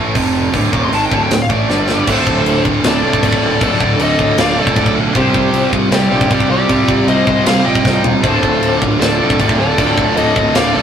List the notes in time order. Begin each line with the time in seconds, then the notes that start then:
Already playing: A1 A2 E3 A3
0.15 F1 F2 C3 F3, kick, open hi-hat
0.54 D1 D2 A2 D3, kick, open hi-hat
0.72 D#1 D#2 A#2 D#3 D6, kick
0.85 C6
0.92 G#1 G#2 D#3 G#3 A5, open hi-hat
1.05 G5
1.10 D1 D2 A2 D3, kick
1.16 A5
1.24 G5
1.30 D1 D2 A2 G5, snare, open hi-hat
1.42 F5
1.49 A1 A2 E3 A3 D5, kick
1.69 G1 G2 D3 G3, snare
1.89 snare
2.06 D1 D2 A2 D3 A3 F4 A4, kick, crash
2.11 C5
2.27 D1, kick
2.46 D1, crash
2.65 D1, kick
2.84 D1 D2 A2 A4 D5, snare, crash
2.88 D3
3.02 C2 D2 A2 D3
3.13 kick
3.21 D1 D2 A2 D3, kick, crash
3.33 kick
3.41 D1
3.60 D1 D2 A2 D3 A4 D5, kick, crash
3.80 D1, kick
3.99 D1 A4 D#5, crash
4.19 D1, kick
4.36 D1 D2 A2 D3 D5 F5, snare, crash
4.56 C2 A2 D3 A4 D5
4.60 D2
4.67 kick
4.75 D1 D2 A2 D3, kick, crash
4.86 kick
4.95 B1
5.14 C2 C3 G3 C4 G4 C5, kick, crash
5.34 C2, kick
5.53 C2, crash
5.73 C2, kick
5.89 C2 C3 G3 C4 D5, snare, crash
5.94 G4
6.10 A#1 G3 C4
6.14 C3
6.21 kick
6.30 C2 C3 G3 C4 G4 D5, kick, crash
6.40 kick
6.49 C2 G4 D5
6.68 C2 C3 G3 C4, kick, crash
6.88 C2, kick
7.07 C2 C5 D#5, crash
7.27 C2 C5 D#5, kick
7.45 C2 C3 G3 C4 C5 F5, snare, crash
7.65 A#1 C3 G3 C4 D#5 G5
7.75 kick
7.83 C2 C3 G3, kick, snare
7.87 C4
8.04 C2, floor tom
8.21 D1 D2 A2 D3 A3 A4 C5, kick, crash
8.43 D1, kick
8.62 D1, crash
8.82 D1, kick
9.00 D1 D2 A2 A4 D5, snare, crash
9.04 D3
9.19 C2 D2 A2 D3
9.30 kick
9.38 D1 D2 A2 D3, kick, crash
9.49 kick
9.58 D1 A4 D5
9.77 D1 D2 A2 D3, kick, crash
9.97 D1, kick
10.17 D1 A4 D#5, crash
10.36 D1, kick
10.55 D1 D2 A2 D3 D5 F5, snare, crash
10.74 C2 D2 A2 D3 A4 D5